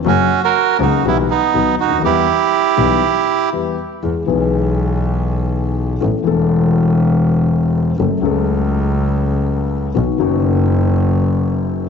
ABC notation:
X:1
M:4/4
L:1/16
Q:1/4=121
K:Em
V:1 name="Bandoneon"
[^CF]3 [F^A]3 [^DF]2 [B,E]2 [B,D]4 [DF]2 | [EG]12 z4 | [K:E] z16 | z16 |
z16 | z16 |]
V:2 name="Grand piano" clef=bass
[F,,^C,F,^A,F]2 z4 [^C,,C,F,A,F]2 [B,,,B,,E,G,B,G]2 z2 [B,,,B,,^D,F,B,F]2 z/2 C,,/2 =D,,/2 ^D,,/2 | [E,,E,G,B,G]2 z4 [B,,,B,,E,G,B,G]2 z4 [E,,E,G,B,G]2 z2 | [K:E] [E,,E,G,B,G]2 [B,,,B,,E,G,B,G]12- [B,,,B,,E,G,B,G]2 | [A,,,A,,E,A,B,A]2 [E,,,E,,E,A,B,A]12- [E,,,E,,E,A,B,A]2 |
[F,,F,A,CA]2 [C,,C,F,A,CA]12- [C,,C,F,A,CA]2 | [B,,,B,,D,F,B,F]2 [F,,,F,,D,F,B,F]12- [F,,,F,,D,F,B,F]2 |]
V:3 name="Double bass" clef=bass
F,,,2 z4 ^C,,2 B,,,2 z2 B,,,2 D,,2 | E,,2 z4 B,,,2 z8 | [K:E] E,,2 B,,,12- B,,,2 | A,,,2 E,,,12- E,,,2 |
F,,,2 C,,12- C,,2 | B,,,2 F,,,12- F,,,2 |]